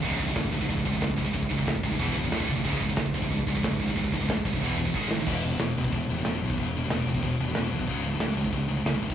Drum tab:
CC |x---------------|----------------|----------------|----------------|
RD |--x-x-x-x-x-x-x-|x-x-x-x-x-x-x-x-|x-x-x-x-x-x-x-x-|x-x-x-x-x-x-----|
SD |----o-------o---|----o-------o---|----o-------o---|----o---------o-|
BD |oooooooooooooooo|oooooooooooooooo|oooooooooooooooo|ooooooooooooo---|

CC |x---x---x---x---|x---x---x---x---|x---x---x---x---|
RD |----------------|----------------|----------------|
SD |----o-------o---|----o-------o---|----o-------o---|
BD |o------oo------o|o------oo------o|o------oo------o|